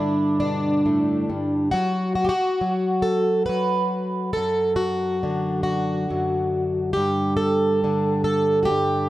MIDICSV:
0, 0, Header, 1, 2, 480
1, 0, Start_track
1, 0, Key_signature, 1, "major"
1, 0, Tempo, 869565
1, 960, Time_signature, 6, 3, 24, 8
1, 5018, End_track
2, 0, Start_track
2, 0, Title_t, "Twelve-string acoustic guitar"
2, 0, Program_c, 0, 25
2, 0, Note_on_c, 0, 43, 60
2, 0, Note_on_c, 0, 50, 53
2, 0, Note_on_c, 0, 62, 76
2, 0, Note_on_c, 0, 64, 86
2, 214, Note_off_c, 0, 62, 0
2, 221, Note_on_c, 0, 62, 78
2, 230, Note_on_c, 0, 47, 53
2, 235, Note_off_c, 0, 64, 0
2, 471, Note_off_c, 0, 47, 0
2, 473, Note_on_c, 0, 45, 56
2, 708, Note_off_c, 0, 43, 0
2, 715, Note_on_c, 0, 43, 57
2, 717, Note_off_c, 0, 45, 0
2, 944, Note_off_c, 0, 62, 0
2, 946, Note_on_c, 0, 66, 88
2, 955, Note_off_c, 0, 50, 0
2, 957, Note_on_c, 0, 54, 56
2, 958, Note_off_c, 0, 43, 0
2, 1182, Note_off_c, 0, 66, 0
2, 1189, Note_on_c, 0, 66, 81
2, 1240, Note_on_c, 0, 67, 74
2, 1256, Note_off_c, 0, 54, 0
2, 1257, Note_off_c, 0, 66, 0
2, 1264, Note_on_c, 0, 66, 88
2, 1278, Note_off_c, 0, 67, 0
2, 1441, Note_on_c, 0, 54, 53
2, 1669, Note_on_c, 0, 69, 91
2, 1907, Note_off_c, 0, 69, 0
2, 1909, Note_on_c, 0, 71, 86
2, 1920, Note_off_c, 0, 54, 0
2, 1926, Note_on_c, 0, 54, 51
2, 2155, Note_off_c, 0, 66, 0
2, 2375, Note_off_c, 0, 54, 0
2, 2389, Note_off_c, 0, 71, 0
2, 2391, Note_on_c, 0, 69, 86
2, 2411, Note_on_c, 0, 42, 64
2, 2625, Note_off_c, 0, 69, 0
2, 2628, Note_on_c, 0, 66, 79
2, 2888, Note_on_c, 0, 50, 56
2, 3103, Note_off_c, 0, 66, 0
2, 3109, Note_on_c, 0, 66, 76
2, 3364, Note_off_c, 0, 42, 0
2, 3370, Note_on_c, 0, 42, 55
2, 3817, Note_off_c, 0, 42, 0
2, 3824, Note_off_c, 0, 66, 0
2, 3826, Note_on_c, 0, 67, 91
2, 3845, Note_on_c, 0, 43, 69
2, 4064, Note_off_c, 0, 67, 0
2, 4066, Note_on_c, 0, 69, 83
2, 4320, Note_off_c, 0, 50, 0
2, 4327, Note_on_c, 0, 50, 55
2, 4544, Note_off_c, 0, 69, 0
2, 4550, Note_on_c, 0, 69, 78
2, 4757, Note_off_c, 0, 69, 0
2, 4762, Note_on_c, 0, 66, 61
2, 4777, Note_on_c, 0, 67, 99
2, 4801, Note_off_c, 0, 43, 0
2, 4801, Note_off_c, 0, 66, 0
2, 4807, Note_on_c, 0, 43, 54
2, 5018, Note_off_c, 0, 43, 0
2, 5018, Note_off_c, 0, 50, 0
2, 5018, Note_off_c, 0, 67, 0
2, 5018, End_track
0, 0, End_of_file